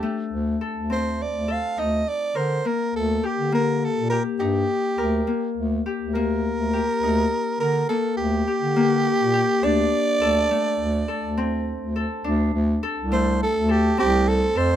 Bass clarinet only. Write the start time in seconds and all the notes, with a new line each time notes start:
0.32 D2
0.76 D2
1.34 D2
1.79 D2
2.36 D3
2.95 D2
3.38 D3
3.97 A#2
4.40 G2
4.98 D2
5.57 D2
6.01 D2
6.58 D2
7.02 D2
7.60 D3
8.18 D2
8.62 D3
9.20 A#2
9.63 D2
10.21 D2
10.79 D2
11.23 D2
11.82 D2
12.25 D2
12.54 D2
12.98 C2
13.56 D2
13.99 C2
14.56 F2